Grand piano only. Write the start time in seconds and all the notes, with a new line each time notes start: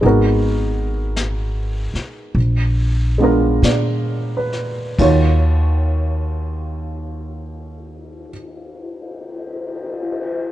0.01 G#3 B3 D#4
0.05 F#4 A#4
3.18 G#3 B3 D4
3.22 F4 A#4
3.64 D5
4.37 B4
4.99 D#2 D#3 F4 F#4 C#5